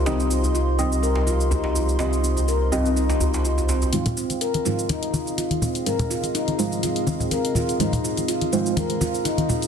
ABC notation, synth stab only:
X:1
M:4/4
L:1/8
Q:"Swing 16ths" 1/4=124
K:Fm
V:1 name="Synth stab"
[CEGe]3 [CEGe]4- [CEGe] | [CEGe]3 [CEGe]4- [CEGe] | [A,EFc]3 [A,EFc]4- [A,EFc] | [A,EFc]3 [A,EFc]4- [A,EFc] |
[A,EFc]3 [A,EFc]4- [A,EFc] |]